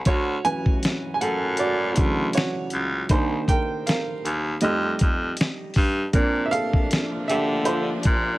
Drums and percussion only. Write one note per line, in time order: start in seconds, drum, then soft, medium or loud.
0.05 kick loud
0.05 closed hi-hat medium
0.45 closed hi-hat medium
0.66 kick medium
0.83 snare loud
0.83 closed hi-hat medium
1.21 closed hi-hat medium
1.57 closed hi-hat medium
1.96 kick loud
1.96 closed hi-hat medium
2.33 closed hi-hat medium
2.37 snare loud
2.70 closed hi-hat medium
3.09 kick loud
3.09 closed hi-hat medium
3.48 kick medium
3.48 closed hi-hat medium
3.87 snare loud
3.87 closed hi-hat medium
4.25 closed hi-hat medium
4.61 closed hi-hat medium
4.99 kick medium
4.99 closed hi-hat medium
5.37 closed hi-hat medium
5.41 snare loud
5.74 kick medium
5.74 open hi-hat soft
6.13 kick loud
6.13 closed hi-hat medium
6.53 closed hi-hat medium
6.73 kick medium
6.91 snare loud
6.91 closed hi-hat medium
7.29 closed hi-hat medium
7.65 closed hi-hat medium
8.03 kick loud
8.03 closed hi-hat medium